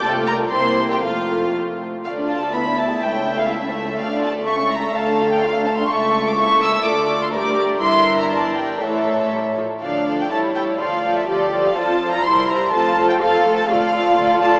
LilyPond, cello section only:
\new Staff \with { instrumentName = "Cello section" } { \clef bass \time 2/4 \key f \major \tempo 4 = 124 c4 c4 | f,4. r8 | \key d \minor d,2 | cis,2 |
d,4 cis,4 | d,2 | cis,2 | d,2 |
g,2 | a,4. r8 | d'4 e'4 | f'4 g'4 |
f'4 e'4 | f'4 a'4 | f'2 | }